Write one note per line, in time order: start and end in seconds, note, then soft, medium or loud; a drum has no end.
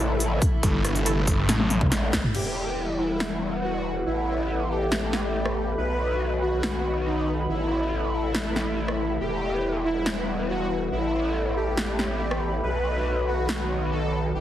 0.00 0.40 A1 medium
0.00 2.31 C3 medium
0.00 2.31 E3 medium
0.00 2.31 A3 medium
0.00 2.31 E4 medium
0.00 3.03 A4 loud
0.00 3.03 E5 medium
0.00 3.03 B5 medium
0.20 closed hi-hat medium
0.42 kick loud
0.42 closed hi-hat medium
0.63 1.47 G1 medium
0.63 kick loud
0.63 closed hi-hat medium
0.85 cross-stick medium
0.85 closed hi-hat medium
0.95 closed hi-hat soft
1.06 1.12 A3 medium
1.06 1.12 E4 medium
1.06 1.12 A4 medium
1.06 closed hi-hat medium
1.27 kick medium
1.27 closed hi-hat medium
1.49 1.79 A1 medium
1.49 snare medium
1.49 closed hi-hat medium
1.60 high tom medium
1.70 closed hi-hat medium
1.70 high tom medium
1.81 2.22 A1 loud
1.81 kick loud
1.81 mid tom medium
1.92 snare medium
1.92 closed hi-hat medium
2.13 kick medium
2.13 snare loud
2.13 closed hi-hat medium
2.24 mid tom medium
2.34 4.04 E1 medium
2.34 5.74 E3 medium
2.34 4.04 G3 medium
2.34 7.45 B3 medium
2.34 4.75 E4 medium
2.34 2.90 G4 medium
2.34 4.04 F#5 medium
2.34 crash medium
2.71 4.75 F#5 medium
2.88 4.75 B4 medium
2.99 3.55 E4 medium
3.20 snare loud
3.63 3.95 F#4 medium
4.06 5.75 A1 medium
4.06 5.76 A3 medium
4.06 4.62 E4 loud
4.06 5.76 A4 medium
4.06 6.46 A4 medium
4.16 5.77 E5 medium
4.70 5.69 G4 medium
4.83 9.89 B5 medium
4.92 snare loud
5.13 snare medium
5.45 cross-stick medium
5.77 7.47 B1 medium
5.77 7.47 D#3 medium
5.77 7.47 F#3 medium
5.77 7.47 F#4 medium
5.77 8.17 B4 medium
5.77 6.33 B4 loud
6.25 8.18 F#5 medium
6.42 6.98 F#4 medium
6.63 snare loud
7.06 7.37 D#4 medium
7.49 9.18 A1 medium
7.49 9.19 C3 medium
7.49 9.19 E3 medium
7.49 9.19 A3 medium
7.49 8.05 E4 medium
7.49 9.19 E4 medium
7.49 9.82 A4 medium
8.00 9.89 E5 medium
8.13 9.12 E4 loud
8.35 snare loud
8.56 snare medium
8.88 cross-stick medium
9.20 10.90 E1 medium
9.20 12.60 E3 medium
9.20 10.90 G3 medium
9.20 14.31 B3 medium
9.20 11.60 E4 medium
9.20 9.76 G4 loud
9.20 10.90 F#5 medium
9.76 11.60 B4 medium
9.85 10.40 E4 medium
9.98 11.60 F#5 medium
10.06 snare loud
10.49 10.80 F#4 medium
10.92 12.61 A1 medium
10.92 12.61 A3 medium
10.92 11.48 E4 loud
10.92 12.62 A4 medium
10.92 13.32 A4 medium
11.15 12.63 E5 medium
11.26 14.40 B5 medium
11.56 12.55 G4 loud
11.77 snare loud
11.99 snare medium
12.31 cross-stick medium
12.63 14.33 B1 medium
12.63 14.33 D#3 medium
12.63 14.33 F#3 medium
12.63 14.33 F#4 medium
12.63 13.19 B4 loud
12.63 14.40 B4 medium
12.77 14.40 F#5 medium
13.27 13.83 F#4 medium
13.49 snare loud
13.92 14.23 A4 medium
14.34 14.40 A1 medium
14.34 14.40 C3 medium
14.34 14.40 E3 medium
14.34 14.40 A3 medium
14.34 14.40 E4 medium
14.34 14.40 G4 loud
14.34 14.40 A4 medium